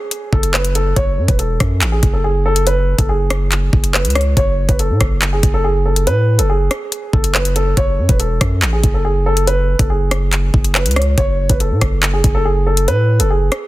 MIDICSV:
0, 0, Header, 1, 4, 480
1, 0, Start_track
1, 0, Key_signature, 3, "minor"
1, 0, Tempo, 425532
1, 1086, Time_signature, 4, 2, 24, 8
1, 15425, End_track
2, 0, Start_track
2, 0, Title_t, "Grand piano"
2, 0, Program_c, 0, 0
2, 0, Note_on_c, 0, 68, 86
2, 325, Note_off_c, 0, 68, 0
2, 370, Note_on_c, 0, 69, 83
2, 579, Note_off_c, 0, 69, 0
2, 608, Note_on_c, 0, 71, 93
2, 817, Note_off_c, 0, 71, 0
2, 849, Note_on_c, 0, 69, 87
2, 1058, Note_off_c, 0, 69, 0
2, 1088, Note_on_c, 0, 73, 116
2, 1426, Note_off_c, 0, 73, 0
2, 1449, Note_on_c, 0, 71, 78
2, 1553, Note_off_c, 0, 71, 0
2, 1566, Note_on_c, 0, 69, 81
2, 2130, Note_off_c, 0, 69, 0
2, 2166, Note_on_c, 0, 68, 84
2, 2377, Note_off_c, 0, 68, 0
2, 2407, Note_on_c, 0, 69, 76
2, 2512, Note_off_c, 0, 69, 0
2, 2528, Note_on_c, 0, 68, 83
2, 2738, Note_off_c, 0, 68, 0
2, 2770, Note_on_c, 0, 69, 95
2, 2979, Note_off_c, 0, 69, 0
2, 3010, Note_on_c, 0, 71, 99
2, 3347, Note_off_c, 0, 71, 0
2, 3371, Note_on_c, 0, 69, 77
2, 3474, Note_off_c, 0, 69, 0
2, 3487, Note_on_c, 0, 68, 85
2, 4402, Note_off_c, 0, 68, 0
2, 4444, Note_on_c, 0, 71, 85
2, 4655, Note_off_c, 0, 71, 0
2, 4692, Note_on_c, 0, 73, 79
2, 4900, Note_off_c, 0, 73, 0
2, 4927, Note_on_c, 0, 73, 112
2, 5266, Note_off_c, 0, 73, 0
2, 5287, Note_on_c, 0, 71, 79
2, 5392, Note_off_c, 0, 71, 0
2, 5409, Note_on_c, 0, 69, 80
2, 5972, Note_off_c, 0, 69, 0
2, 6010, Note_on_c, 0, 68, 85
2, 6219, Note_off_c, 0, 68, 0
2, 6248, Note_on_c, 0, 69, 91
2, 6352, Note_off_c, 0, 69, 0
2, 6365, Note_on_c, 0, 68, 84
2, 6576, Note_off_c, 0, 68, 0
2, 6604, Note_on_c, 0, 69, 78
2, 6815, Note_off_c, 0, 69, 0
2, 6847, Note_on_c, 0, 71, 111
2, 7185, Note_off_c, 0, 71, 0
2, 7202, Note_on_c, 0, 69, 86
2, 7309, Note_off_c, 0, 69, 0
2, 7327, Note_on_c, 0, 68, 89
2, 8003, Note_off_c, 0, 68, 0
2, 8047, Note_on_c, 0, 69, 83
2, 8257, Note_off_c, 0, 69, 0
2, 8284, Note_on_c, 0, 71, 93
2, 8496, Note_off_c, 0, 71, 0
2, 8526, Note_on_c, 0, 69, 88
2, 8736, Note_off_c, 0, 69, 0
2, 8769, Note_on_c, 0, 73, 119
2, 9106, Note_off_c, 0, 73, 0
2, 9127, Note_on_c, 0, 71, 81
2, 9232, Note_off_c, 0, 71, 0
2, 9245, Note_on_c, 0, 69, 80
2, 9810, Note_off_c, 0, 69, 0
2, 9845, Note_on_c, 0, 68, 82
2, 10056, Note_off_c, 0, 68, 0
2, 10086, Note_on_c, 0, 69, 76
2, 10191, Note_off_c, 0, 69, 0
2, 10205, Note_on_c, 0, 68, 81
2, 10416, Note_off_c, 0, 68, 0
2, 10447, Note_on_c, 0, 69, 95
2, 10657, Note_off_c, 0, 69, 0
2, 10686, Note_on_c, 0, 71, 98
2, 11025, Note_off_c, 0, 71, 0
2, 11047, Note_on_c, 0, 69, 74
2, 11152, Note_off_c, 0, 69, 0
2, 11166, Note_on_c, 0, 68, 82
2, 12081, Note_off_c, 0, 68, 0
2, 12124, Note_on_c, 0, 71, 80
2, 12335, Note_off_c, 0, 71, 0
2, 12369, Note_on_c, 0, 73, 81
2, 12578, Note_off_c, 0, 73, 0
2, 12606, Note_on_c, 0, 73, 115
2, 12945, Note_off_c, 0, 73, 0
2, 12969, Note_on_c, 0, 71, 80
2, 13073, Note_off_c, 0, 71, 0
2, 13088, Note_on_c, 0, 69, 80
2, 13651, Note_off_c, 0, 69, 0
2, 13688, Note_on_c, 0, 68, 88
2, 13898, Note_off_c, 0, 68, 0
2, 13927, Note_on_c, 0, 69, 93
2, 14032, Note_off_c, 0, 69, 0
2, 14047, Note_on_c, 0, 68, 89
2, 14257, Note_off_c, 0, 68, 0
2, 14286, Note_on_c, 0, 69, 79
2, 14497, Note_off_c, 0, 69, 0
2, 14528, Note_on_c, 0, 71, 115
2, 14866, Note_off_c, 0, 71, 0
2, 14884, Note_on_c, 0, 69, 82
2, 14990, Note_off_c, 0, 69, 0
2, 15007, Note_on_c, 0, 68, 83
2, 15425, Note_off_c, 0, 68, 0
2, 15425, End_track
3, 0, Start_track
3, 0, Title_t, "808-style bass"
3, 0, Program_c, 1, 38
3, 368, Note_on_c, 1, 30, 105
3, 1058, Note_off_c, 1, 30, 0
3, 1088, Note_on_c, 1, 30, 103
3, 1327, Note_on_c, 1, 42, 98
3, 1344, Note_off_c, 1, 30, 0
3, 1441, Note_off_c, 1, 42, 0
3, 1448, Note_on_c, 1, 28, 104
3, 1793, Note_off_c, 1, 28, 0
3, 1809, Note_on_c, 1, 42, 109
3, 2047, Note_on_c, 1, 33, 106
3, 2064, Note_off_c, 1, 42, 0
3, 2275, Note_off_c, 1, 33, 0
3, 2288, Note_on_c, 1, 30, 105
3, 3324, Note_off_c, 1, 30, 0
3, 3367, Note_on_c, 1, 30, 103
3, 4173, Note_off_c, 1, 30, 0
3, 4208, Note_on_c, 1, 30, 109
3, 4567, Note_on_c, 1, 37, 103
3, 4584, Note_off_c, 1, 30, 0
3, 4909, Note_off_c, 1, 37, 0
3, 4927, Note_on_c, 1, 30, 114
3, 5273, Note_off_c, 1, 30, 0
3, 5287, Note_on_c, 1, 30, 104
3, 5526, Note_on_c, 1, 45, 105
3, 5543, Note_off_c, 1, 30, 0
3, 5640, Note_off_c, 1, 45, 0
3, 5647, Note_on_c, 1, 30, 107
3, 6108, Note_off_c, 1, 30, 0
3, 6127, Note_on_c, 1, 30, 108
3, 6847, Note_on_c, 1, 45, 98
3, 6864, Note_off_c, 1, 30, 0
3, 7207, Note_on_c, 1, 30, 101
3, 7224, Note_off_c, 1, 45, 0
3, 7549, Note_off_c, 1, 30, 0
3, 8047, Note_on_c, 1, 30, 104
3, 8738, Note_off_c, 1, 30, 0
3, 8766, Note_on_c, 1, 30, 109
3, 9005, Note_on_c, 1, 42, 101
3, 9022, Note_off_c, 1, 30, 0
3, 9120, Note_off_c, 1, 42, 0
3, 9126, Note_on_c, 1, 28, 106
3, 9472, Note_off_c, 1, 28, 0
3, 9487, Note_on_c, 1, 42, 109
3, 9726, Note_on_c, 1, 33, 106
3, 9743, Note_off_c, 1, 42, 0
3, 9954, Note_off_c, 1, 33, 0
3, 9967, Note_on_c, 1, 30, 106
3, 11004, Note_off_c, 1, 30, 0
3, 11047, Note_on_c, 1, 30, 102
3, 11853, Note_off_c, 1, 30, 0
3, 11887, Note_on_c, 1, 30, 103
3, 12248, Note_on_c, 1, 37, 103
3, 12265, Note_off_c, 1, 30, 0
3, 12589, Note_off_c, 1, 37, 0
3, 12607, Note_on_c, 1, 30, 111
3, 12952, Note_off_c, 1, 30, 0
3, 12967, Note_on_c, 1, 30, 110
3, 13208, Note_on_c, 1, 45, 104
3, 13225, Note_off_c, 1, 30, 0
3, 13322, Note_off_c, 1, 45, 0
3, 13328, Note_on_c, 1, 30, 101
3, 13788, Note_off_c, 1, 30, 0
3, 13808, Note_on_c, 1, 30, 107
3, 14527, Note_on_c, 1, 45, 98
3, 14544, Note_off_c, 1, 30, 0
3, 14887, Note_on_c, 1, 30, 100
3, 14904, Note_off_c, 1, 45, 0
3, 15229, Note_off_c, 1, 30, 0
3, 15425, End_track
4, 0, Start_track
4, 0, Title_t, "Drums"
4, 128, Note_on_c, 9, 42, 78
4, 240, Note_off_c, 9, 42, 0
4, 368, Note_on_c, 9, 36, 97
4, 480, Note_off_c, 9, 36, 0
4, 487, Note_on_c, 9, 42, 76
4, 600, Note_off_c, 9, 42, 0
4, 608, Note_on_c, 9, 39, 121
4, 721, Note_off_c, 9, 39, 0
4, 728, Note_on_c, 9, 42, 92
4, 841, Note_off_c, 9, 42, 0
4, 848, Note_on_c, 9, 42, 78
4, 961, Note_off_c, 9, 42, 0
4, 1088, Note_on_c, 9, 36, 113
4, 1088, Note_on_c, 9, 42, 80
4, 1201, Note_off_c, 9, 36, 0
4, 1201, Note_off_c, 9, 42, 0
4, 1448, Note_on_c, 9, 36, 101
4, 1449, Note_on_c, 9, 42, 96
4, 1561, Note_off_c, 9, 36, 0
4, 1561, Note_off_c, 9, 42, 0
4, 1568, Note_on_c, 9, 42, 76
4, 1681, Note_off_c, 9, 42, 0
4, 1808, Note_on_c, 9, 37, 95
4, 1808, Note_on_c, 9, 42, 80
4, 1809, Note_on_c, 9, 36, 94
4, 1921, Note_off_c, 9, 36, 0
4, 1921, Note_off_c, 9, 37, 0
4, 1921, Note_off_c, 9, 42, 0
4, 2047, Note_on_c, 9, 39, 112
4, 2048, Note_on_c, 9, 42, 75
4, 2160, Note_off_c, 9, 39, 0
4, 2161, Note_off_c, 9, 42, 0
4, 2287, Note_on_c, 9, 42, 84
4, 2288, Note_on_c, 9, 36, 100
4, 2400, Note_off_c, 9, 42, 0
4, 2401, Note_off_c, 9, 36, 0
4, 2887, Note_on_c, 9, 42, 84
4, 3000, Note_off_c, 9, 42, 0
4, 3008, Note_on_c, 9, 42, 80
4, 3121, Note_off_c, 9, 42, 0
4, 3367, Note_on_c, 9, 36, 101
4, 3367, Note_on_c, 9, 42, 92
4, 3480, Note_off_c, 9, 36, 0
4, 3480, Note_off_c, 9, 42, 0
4, 3727, Note_on_c, 9, 42, 85
4, 3728, Note_on_c, 9, 37, 98
4, 3840, Note_off_c, 9, 42, 0
4, 3841, Note_off_c, 9, 37, 0
4, 3967, Note_on_c, 9, 39, 69
4, 3968, Note_on_c, 9, 42, 75
4, 4080, Note_off_c, 9, 39, 0
4, 4080, Note_off_c, 9, 42, 0
4, 4207, Note_on_c, 9, 36, 102
4, 4320, Note_off_c, 9, 36, 0
4, 4328, Note_on_c, 9, 42, 78
4, 4441, Note_off_c, 9, 42, 0
4, 4449, Note_on_c, 9, 39, 120
4, 4562, Note_off_c, 9, 39, 0
4, 4567, Note_on_c, 9, 42, 90
4, 4627, Note_off_c, 9, 42, 0
4, 4627, Note_on_c, 9, 42, 78
4, 4687, Note_off_c, 9, 42, 0
4, 4687, Note_on_c, 9, 37, 107
4, 4687, Note_on_c, 9, 42, 67
4, 4747, Note_off_c, 9, 42, 0
4, 4747, Note_on_c, 9, 42, 54
4, 4799, Note_off_c, 9, 37, 0
4, 4860, Note_off_c, 9, 42, 0
4, 4927, Note_on_c, 9, 36, 112
4, 4927, Note_on_c, 9, 42, 80
4, 5040, Note_off_c, 9, 36, 0
4, 5040, Note_off_c, 9, 42, 0
4, 5287, Note_on_c, 9, 36, 102
4, 5287, Note_on_c, 9, 42, 95
4, 5400, Note_off_c, 9, 36, 0
4, 5400, Note_off_c, 9, 42, 0
4, 5406, Note_on_c, 9, 42, 74
4, 5519, Note_off_c, 9, 42, 0
4, 5646, Note_on_c, 9, 42, 85
4, 5647, Note_on_c, 9, 36, 97
4, 5647, Note_on_c, 9, 37, 96
4, 5759, Note_off_c, 9, 42, 0
4, 5760, Note_off_c, 9, 36, 0
4, 5760, Note_off_c, 9, 37, 0
4, 5885, Note_on_c, 9, 39, 116
4, 5886, Note_on_c, 9, 42, 75
4, 5998, Note_off_c, 9, 39, 0
4, 5998, Note_off_c, 9, 42, 0
4, 6127, Note_on_c, 9, 36, 99
4, 6127, Note_on_c, 9, 42, 88
4, 6239, Note_off_c, 9, 42, 0
4, 6240, Note_off_c, 9, 36, 0
4, 6727, Note_on_c, 9, 42, 84
4, 6840, Note_off_c, 9, 42, 0
4, 6846, Note_on_c, 9, 42, 84
4, 6959, Note_off_c, 9, 42, 0
4, 7207, Note_on_c, 9, 42, 95
4, 7319, Note_off_c, 9, 42, 0
4, 7567, Note_on_c, 9, 42, 81
4, 7568, Note_on_c, 9, 37, 96
4, 7680, Note_off_c, 9, 37, 0
4, 7680, Note_off_c, 9, 42, 0
4, 7807, Note_on_c, 9, 42, 78
4, 7919, Note_off_c, 9, 42, 0
4, 8047, Note_on_c, 9, 36, 101
4, 8160, Note_off_c, 9, 36, 0
4, 8166, Note_on_c, 9, 42, 79
4, 8279, Note_off_c, 9, 42, 0
4, 8287, Note_on_c, 9, 39, 121
4, 8400, Note_off_c, 9, 39, 0
4, 8406, Note_on_c, 9, 42, 90
4, 8519, Note_off_c, 9, 42, 0
4, 8525, Note_on_c, 9, 42, 80
4, 8638, Note_off_c, 9, 42, 0
4, 8766, Note_on_c, 9, 36, 114
4, 8766, Note_on_c, 9, 42, 82
4, 8879, Note_off_c, 9, 36, 0
4, 8879, Note_off_c, 9, 42, 0
4, 9125, Note_on_c, 9, 42, 97
4, 9126, Note_on_c, 9, 36, 101
4, 9238, Note_off_c, 9, 42, 0
4, 9239, Note_off_c, 9, 36, 0
4, 9245, Note_on_c, 9, 42, 77
4, 9358, Note_off_c, 9, 42, 0
4, 9486, Note_on_c, 9, 42, 79
4, 9487, Note_on_c, 9, 36, 94
4, 9487, Note_on_c, 9, 37, 99
4, 9599, Note_off_c, 9, 42, 0
4, 9600, Note_off_c, 9, 36, 0
4, 9600, Note_off_c, 9, 37, 0
4, 9726, Note_on_c, 9, 39, 114
4, 9726, Note_on_c, 9, 42, 72
4, 9838, Note_off_c, 9, 39, 0
4, 9839, Note_off_c, 9, 42, 0
4, 9966, Note_on_c, 9, 42, 83
4, 9967, Note_on_c, 9, 36, 97
4, 10079, Note_off_c, 9, 42, 0
4, 10080, Note_off_c, 9, 36, 0
4, 10568, Note_on_c, 9, 42, 90
4, 10680, Note_off_c, 9, 42, 0
4, 10688, Note_on_c, 9, 42, 78
4, 10800, Note_off_c, 9, 42, 0
4, 11047, Note_on_c, 9, 36, 102
4, 11047, Note_on_c, 9, 42, 95
4, 11160, Note_off_c, 9, 36, 0
4, 11160, Note_off_c, 9, 42, 0
4, 11408, Note_on_c, 9, 37, 96
4, 11408, Note_on_c, 9, 42, 80
4, 11520, Note_off_c, 9, 42, 0
4, 11521, Note_off_c, 9, 37, 0
4, 11647, Note_on_c, 9, 39, 67
4, 11648, Note_on_c, 9, 42, 80
4, 11760, Note_off_c, 9, 39, 0
4, 11761, Note_off_c, 9, 42, 0
4, 11887, Note_on_c, 9, 36, 99
4, 12000, Note_off_c, 9, 36, 0
4, 12007, Note_on_c, 9, 42, 75
4, 12120, Note_off_c, 9, 42, 0
4, 12127, Note_on_c, 9, 39, 120
4, 12240, Note_off_c, 9, 39, 0
4, 12247, Note_on_c, 9, 42, 92
4, 12307, Note_off_c, 9, 42, 0
4, 12307, Note_on_c, 9, 42, 80
4, 12367, Note_off_c, 9, 42, 0
4, 12367, Note_on_c, 9, 37, 106
4, 12367, Note_on_c, 9, 42, 66
4, 12427, Note_off_c, 9, 42, 0
4, 12427, Note_on_c, 9, 42, 53
4, 12480, Note_off_c, 9, 37, 0
4, 12540, Note_off_c, 9, 42, 0
4, 12607, Note_on_c, 9, 36, 113
4, 12607, Note_on_c, 9, 42, 82
4, 12720, Note_off_c, 9, 36, 0
4, 12720, Note_off_c, 9, 42, 0
4, 12966, Note_on_c, 9, 42, 98
4, 12967, Note_on_c, 9, 36, 103
4, 13079, Note_off_c, 9, 42, 0
4, 13080, Note_off_c, 9, 36, 0
4, 13087, Note_on_c, 9, 42, 77
4, 13200, Note_off_c, 9, 42, 0
4, 13327, Note_on_c, 9, 37, 97
4, 13327, Note_on_c, 9, 42, 83
4, 13328, Note_on_c, 9, 36, 97
4, 13440, Note_off_c, 9, 37, 0
4, 13440, Note_off_c, 9, 42, 0
4, 13441, Note_off_c, 9, 36, 0
4, 13567, Note_on_c, 9, 39, 110
4, 13567, Note_on_c, 9, 42, 74
4, 13680, Note_off_c, 9, 39, 0
4, 13680, Note_off_c, 9, 42, 0
4, 13807, Note_on_c, 9, 42, 84
4, 13808, Note_on_c, 9, 36, 98
4, 13920, Note_off_c, 9, 42, 0
4, 13921, Note_off_c, 9, 36, 0
4, 14407, Note_on_c, 9, 42, 85
4, 14520, Note_off_c, 9, 42, 0
4, 14528, Note_on_c, 9, 42, 84
4, 14641, Note_off_c, 9, 42, 0
4, 14888, Note_on_c, 9, 42, 93
4, 15000, Note_off_c, 9, 42, 0
4, 15248, Note_on_c, 9, 37, 97
4, 15248, Note_on_c, 9, 42, 81
4, 15361, Note_off_c, 9, 37, 0
4, 15361, Note_off_c, 9, 42, 0
4, 15425, End_track
0, 0, End_of_file